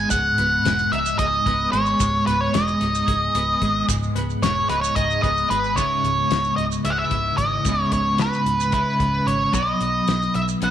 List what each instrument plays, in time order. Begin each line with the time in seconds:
Already playing: clean electric guitar G#3 B3 D#4 G#4, lead electric guitar G#5
0.10 fingered electric bass C#1, clean electric guitar G#2, lead electric guitar F#5, kick, closed hi-hat, maracas
0.38 fingered electric bass C#1, clean electric guitar B3, closed hi-hat
0.65 fingered electric bass E1, clean electric guitar G#3, snare, closed hi-hat
0.79 maracas
0.92 fingered electric bass C#1, clean electric guitar D#4, lead electric guitar E5, closed hi-hat
1.06 maracas
1.19 fingered electric bass C#1, clean electric guitar G#4, lead electric guitar D#5, kick, closed hi-hat
1.46 fingered electric bass C#1, clean electric guitar B3, kick, snare, closed hi-hat
1.72 fingered electric bass G#1, clean electric guitar G#3, lead electric guitar C#5, closed hi-hat
1.86 maracas
1.99 fingered electric bass C#1, clean electric guitar G#2, kick, closed hi-hat, maracas
2.26 fingered electric bass C#1, clean electric guitar B3, lead electric guitar B4, snare, closed hi-hat
2.41 lead electric guitar C#5
2.54 fingered electric bass E1, clean electric guitar G#3, lead electric guitar D#5, snare, closed hi-hat
2.68 maracas
2.81 fingered electric bass C#1, clean electric guitar D#4, snare, closed hi-hat
2.95 maracas
3.07 fingered electric bass C#1, clean electric guitar G#4, kick, closed hi-hat
3.35 fingered electric bass C#1, clean electric guitar B3, closed hi-hat
3.62 fingered electric bass G#1, clean electric guitar G#3, kick, closed hi-hat
3.88 fingered electric bass C#1, clean electric guitar G#2, kick, closed hi-hat, maracas
4.03 maracas
4.15 fingered electric bass C#1, clean electric guitar B3, snare, closed hi-hat
4.30 maracas
4.42 fingered electric bass E1, clean electric guitar G#3, lead electric guitar C#5, snare, closed hi-hat, maracas
4.69 fingered electric bass C#1, clean electric guitar D#4, lead electric guitar B4, snare, closed hi-hat
4.82 lead electric guitar C#5, maracas
4.95 fingered electric bass C#1, clean electric guitar G#4, lead electric guitar D#5, kick, closed hi-hat, maracas
5.11 maracas
5.22 fingered electric bass C#1, clean electric guitar B3, lead electric guitar D#5, kick, closed hi-hat
5.37 maracas
5.49 fingered electric bass G#1, clean electric guitar G#3, lead electric guitar B4, closed hi-hat
5.64 maracas
5.75 fingered electric bass C#1, clean electric guitar C#2 G#2 C#3 G#3 B3 E4, lead electric guitar C#5, kick, closed hi-hat, maracas
6.04 fingered electric bass C#1, closed hi-hat, maracas
6.31 fingered electric bass C#1, snare, closed hi-hat
6.44 maracas
6.56 fingered electric bass C#1, lead electric guitar D#5, closed hi-hat
6.72 maracas
6.83 fingered electric bass C#1, clean electric guitar C#2 G#2 C#3 G#3 B3, lead electric guitar E5, closed hi-hat, maracas
6.88 clean electric guitar E4, lead electric guitar F#5
6.98 lead electric guitar E5
7.11 fingered electric bass C#1, kick, closed hi-hat
7.37 fingered electric bass G#1, lead electric guitar D#5, kick, closed hi-hat
7.65 fingered electric bass C#1, clean electric guitar C#2 G#2 C#3 G#3 B3, kick, closed hi-hat, maracas
7.69 clean electric guitar E4
7.81 lead electric guitar C#5
7.92 fingered electric bass C#1, lead electric guitar C#5, kick, closed hi-hat, maracas
8.18 lead electric guitar B4, snare, closed hi-hat
8.33 maracas
8.46 fingered electric bass C#1, closed hi-hat
8.60 maracas
8.72 clean electric guitar C#2 G#2 C#3 G#3 B3 E4, lead electric guitar B4, kick, closed hi-hat, maracas
9.00 fingered electric bass C#1, kick, closed hi-hat
9.26 fingered electric bass G#1, lead electric guitar C#5, closed hi-hat
9.52 fingered electric bass B1, clean electric guitar B2 F#3 B3 D#4 F#4 B4, lead electric guitar D#5, kick, closed hi-hat, maracas
9.80 fingered electric bass B1, closed hi-hat, maracas
10.07 fingered electric bass B1, snare, closed hi-hat
10.22 maracas
10.34 fingered electric bass B1, lead electric guitar E5, snare, closed hi-hat
10.48 maracas
10.61 fingered electric bass B1, clean electric guitar B2 F#3 B3 D#4 F#4, lead electric guitar F#5, closed hi-hat, maracas
10.65 clean electric guitar B4